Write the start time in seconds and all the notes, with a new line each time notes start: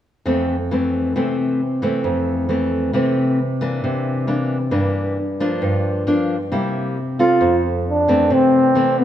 0.26 F2 E3 A3 C4
0.71 E3 A3 C4
1.16 C3 E3 A3 C4
1.82 E3 A3 C4
2.04 F2
2.49 E3 A3 C4
2.93 C3 E3 A3 C4
3.61 E3 A#3 D4
3.84 C3
4.27 E3 A#3 D4
4.71 G2 E3 A#3 D4
5.40 F3 A#3 D4
5.62 G2
6.07 F3 A#3 D4
6.52 C3 G3 A#3 E4
7.19 C4 F4 A4
7.41 F2
7.90 D4
8.08 E3 A3 C4
8.30 C3 C4
8.75 E3 A3 C4
9.00 B3